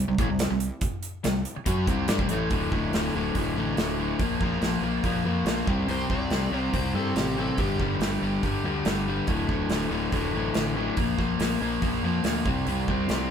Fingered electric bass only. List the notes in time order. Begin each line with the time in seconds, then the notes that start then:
0.09 C2
0.18 A1
0.30 C2
0.51 C2
1.25 C2
1.57 muted fingered electric bass stroke
1.66 F#2
1.87 C2
2.09 G2
2.19 C2
2.31 A1
2.51 D1
2.71 D1
2.93 D1
3.14 D1
3.35 D1
3.56 A1
3.78 D1
4.19 A#1
4.41 A#1
4.61 A#1
4.81 A#1
5.04 A#1
5.24 F2
5.45 A#1
5.67 C2
5.88 C2
6.10 C2
6.31 C2
6.52 C2
6.73 C2
6.93 G2
7.15 A1
7.58 G1
7.79 G1
7.99 G1
8.22 G1
8.43 G1
8.64 D2
8.85 G1
9.28 D1
9.49 D1
9.69 D1
9.91 D1
10.12 D1
10.34 A1
10.55 A1
10.97 A#1
11.19 A#1
11.39 A#1
11.61 A#1
11.82 A#1
12.03 F2
12.24 D2
12.46 C2
12.67 C2
12.87 C2
13.10 C2